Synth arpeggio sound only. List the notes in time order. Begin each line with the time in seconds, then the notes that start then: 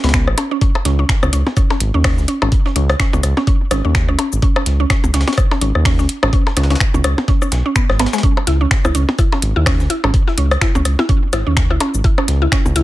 0.04 B3
0.14 B3
0.38 C#4
0.51 C#4
0.61 C#4
0.85 C#4
0.99 C#4
1.23 C#4
1.33 C#4
1.57 C#4
1.70 C#4
1.94 C#4
2.04 C#4
2.28 C#4
2.42 C#4
2.66 C#4
2.76 C#4
3.00 C#4
3.13 C#4
3.37 C#4
3.47 C#4
3.71 C#4
3.85 C#4
4.08 C#4
4.19 C#4
4.42 C#4
4.56 C#4
4.80 C#4
4.90 C#4
5.14 C#4
5.28 C#4
5.51 C#4
5.61 C#4
5.85 C#4
5.99 C#4
6.23 C#4
6.33 C#4
6.57 C#4
6.70 C#4
6.94 C#4
7.04 C#4
7.28 C#4
7.42 C#4
7.66 C#4
7.76 B3
8.00 B3
8.13 G#3
8.23 C#4
8.47 E4
8.61 C#4
8.85 E4
8.95 C#4
9.19 E4
9.32 C#4
9.56 E4
9.66 C#4
9.90 E4
10.04 C#4
10.28 E4
10.38 C#4
10.61 E4
10.75 C#4
10.99 E4
11.09 C#4
11.33 E4
11.47 C#4
11.70 E4
11.80 C#4
12.04 E4
12.18 C#4
12.42 E4
12.52 C#4
12.76 E4